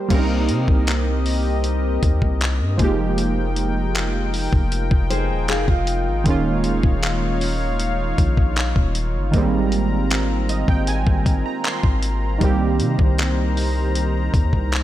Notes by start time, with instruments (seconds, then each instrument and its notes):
0.09 808-style bass C2, synth keys G3 A#3 C4, analog synth pad C4 G4 A#4 D#5, kick, closed hi-hat, crash
0.13 synth keys C#4 A#4
0.19 synth keys D#4
0.49 808-style bass C3, closed hi-hat
0.68 808-style bass C2, kick
0.87 clap, closed hi-hat
1.26 open hi-hat
1.64 closed hi-hat
2.03 808-style bass D#2, kick, closed hi-hat
2.22 808-style bass C2, kick
2.41 clap, closed hi-hat
2.61 808-style bass G2
2.77 808-style bass F1, synth keys F3 G#3 A#3, analog synth pad D#4 F4 A#4 G5, kick, closed hi-hat
2.82 synth keys D#4 G4
3.18 closed hi-hat
3.56 closed hi-hat
3.95 clap, closed hi-hat
4.34 open hi-hat
4.53 808-style bass F1, kick
4.72 closed hi-hat
4.91 808-style bass F1, kick
5.10 steel-string acoustic guitar G#4 C5, closed hi-hat
5.30 808-style bass D#1
5.48 808-style bass F1, steel-string acoustic guitar F4 G#4, clap, closed hi-hat
5.68 808-style bass F1, steel-string acoustic guitar F4, kick
5.87 closed hi-hat
6.07 808-style bass G#1
6.24 808-style bass D#1, synth keys D#3 G#3 A#3, analog synth pad C#5 F5, kick, closed hi-hat
6.29 synth keys C#4 F4
6.64 closed hi-hat
6.83 808-style bass D#1, kick
7.03 clap, closed hi-hat
7.41 open hi-hat
7.80 closed hi-hat
8.18 808-style bass A#1, kick, closed hi-hat
8.37 kick
8.56 clap, closed hi-hat
8.76 808-style bass D#1, kick
8.95 closed hi-hat
9.15 808-style bass G1
9.31 808-style bass G#1, synth keys D#3 G#3 A#3, analog synth pad C4 A#4 A#5, kick, closed hi-hat
9.36 synth keys G3 C4
9.72 closed hi-hat
10.11 clap, closed hi-hat
10.49 synth keys D#5, closed hi-hat
10.68 808-style bass G#1, synth keys G5, kick
10.87 synth keys G#5, closed hi-hat
11.07 808-style bass G#1, kick
11.26 kick, closed hi-hat
11.46 synth keys A#5
11.64 synth keys C6, clap, closed hi-hat
11.83 808-style bass G#1, kick
12.03 closed hi-hat
12.38 808-style bass C2, synth keys D#3 G3 A#3, analog synth pad D#4 C5, kick, closed hi-hat
12.43 synth keys C4 G4
12.80 808-style bass C3, closed hi-hat
12.99 808-style bass C2, kick
13.18 clap, closed hi-hat
13.57 open hi-hat
13.95 closed hi-hat
14.34 808-style bass D#2, kick, closed hi-hat
14.53 808-style bass C2, kick
14.72 clap, closed hi-hat